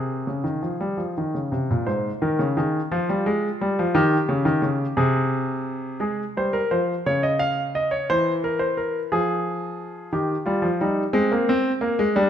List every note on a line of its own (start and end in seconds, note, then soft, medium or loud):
0.00 0.27 C3 medium
0.00 1.49 G#4 medium
0.27 0.46 C#3 medium
0.44 0.63 D#3 medium
0.62 0.81 F3 medium
0.81 0.99 G3 medium
0.97 1.16 F3 medium
1.18 1.35 D#3 medium
1.34 1.53 C#3 medium
1.52 1.70 C3 medium
1.70 1.88 A#2 medium
1.87 2.09 G#2 medium
1.87 2.09 C5 medium
2.22 2.40 D#3 medium
2.22 2.44 A#4 medium
2.39 2.57 C#3 medium
2.57 2.79 D#3 medium
2.57 2.79 G#4 medium
2.92 3.09 F3 medium
2.92 3.92 F4 medium
3.09 3.26 G3 medium
3.26 3.48 G#3 medium
3.61 3.78 G3 medium
3.79 3.95 F3 loud
3.95 4.16 D#3 loud
3.95 4.95 G4 medium
4.29 4.46 C#3 medium
4.45 4.63 D#3 loud
4.62 4.84 C#3 medium
4.97 5.99 C3 loud
4.97 5.98 G#4 medium
6.00 6.22 G#3 medium
6.00 6.23 G#4 medium
6.37 6.59 G3 medium
6.37 6.54 C5 medium
6.53 6.71 A#4 medium
6.71 6.93 F3 medium
6.71 6.93 C5 medium
7.06 8.07 C#3 medium
7.06 7.23 C#5 medium
7.23 7.40 D#5 medium
7.39 7.61 F5 medium
7.75 7.92 D#5 medium
7.91 8.09 C#5 medium
8.10 9.09 E3 medium
8.10 8.31 C5 loud
8.44 8.61 A#4 medium
8.59 8.77 C5 medium
8.77 8.99 A#4 medium
9.12 10.11 F3 medium
9.12 10.11 G#4 medium
10.13 10.34 D#3 medium
10.13 10.34 G4 medium
10.46 10.64 G3 medium
10.46 10.67 F4 medium
10.62 10.80 F3 medium
10.81 11.02 G3 medium
10.81 11.02 D#4 medium
11.13 11.31 G#3 loud
11.13 11.48 C4 medium
11.32 11.49 A#3 medium
11.49 11.70 C4 loud
11.81 11.99 A#3 medium
11.99 12.17 G#3 loud
12.16 12.30 G3 loud
12.16 12.30 D4 medium